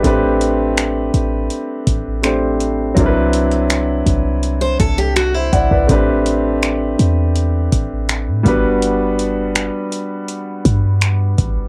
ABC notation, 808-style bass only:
X:1
M:4/4
L:1/16
Q:1/4=82
K:Ador
V:1 name="808-style bass" clef=bass
A,,,6 A,,,2 z2 A,,,6 | C,,6 C,,4 C,,4 C,, C,, | A,,,6 E,,4 A,,,3 A,, G,,,2- | G,,,4- G,,, z4 z G,,4 G,,,2 |]